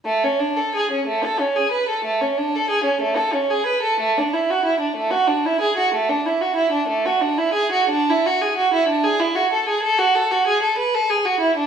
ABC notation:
X:1
M:12/8
L:1/16
Q:3/8=62
K:A
V:1 name="Violin"
A, C D A G C A, A C G B A A, C D A G C A, A C G B A | A, D E F E D A, F D E G F A, D E F E D A, F D E G F | D E F G F E D G E F A G A F A F G A B A G F E D |]